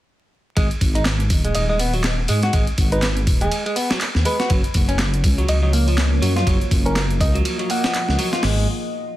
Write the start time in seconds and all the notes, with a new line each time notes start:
0.57 G#1 G#3, kick, closed hi-hat, ride
0.71 closed hi-hat
0.81 G#1, kick, open hi-hat, ride
0.95 D#4, closed hi-hat, ride
1.05 snare, clap, closed hi-hat, ride
1.20 closed hi-hat
1.30 D#1, kick, open hi-hat, ride
1.45 G#3, closed hi-hat
1.55 D#1 D#5, closed hi-hat, ride
1.69 G#3 D#5
1.79 B3, open hi-hat, ride
1.94 F#3, open hi-hat
2.04 snare, clap, closed hi-hat, ride
2.28 G#2 G#3, open hi-hat, ride
2.43 F#4, snare, closed hi-hat
2.53 G#1 G#3, kick, closed hi-hat, ride
2.67 closed hi-hat
2.78 G#1, kick, open hi-hat, ride
2.92 D#4 B4, closed hi-hat
3.02 snare, clap, closed hi-hat, ride
3.17 closed hi-hat
3.27 D#1, kick, open hi-hat, ride
3.41 G#3 G#4, closed hi-hat
3.52 closed hi-hat, ride
3.66 G#3, ride
3.76 B3, open hi-hat, ride
3.90 F#3, snare
4.01 clap, closed hi-hat, ride
4.15 D#2, snare
4.25 G#3 B4, open hi-hat, ride
4.39 F#4, snare, closed hi-hat
4.50 F#1 F3 F#3 A#3 C#5, kick, closed hi-hat, ride
4.64 closed hi-hat
4.74 F#1, kick, open hi-hat, ride
4.89 C#4, closed hi-hat, ride
4.99 snare, clap, closed hi-hat, ride
5.14 closed hi-hat
5.24 C#2, kick, open hi-hat, ride
5.38 F#3, closed hi-hat
5.48 C#2 D#5, closed hi-hat, ride
5.62 F#3 D#5
5.73 A#3, open hi-hat
5.87 F3, open hi-hat
5.98 snare, clap, closed hi-hat, ride
6.22 F#2 F#3, open hi-hat, ride
6.36 F4, snare, closed hi-hat
6.47 F#1 F#3 D#5, kick, closed hi-hat, ride
6.61 closed hi-hat
6.71 F#1, kick, open hi-hat, ride
6.86 C#4 A#4, closed hi-hat
6.96 snare, clap, closed hi-hat, ride
7.11 closed hi-hat
7.21 C#2 D#5, kick, open hi-hat, ride
7.35 F#3, closed hi-hat
7.45 closed hi-hat, ride
7.59 F#3, ride
7.70 A#3 F#5, open hi-hat, ride
7.84 F3, snare, closed hi-hat
7.94 clap, closed hi-hat, ride
8.09 C#2, snare
8.19 F#3, open hi-hat, ride
8.33 F4, snare, closed hi-hat
8.43 G#1 G#3, snare, open hi-hat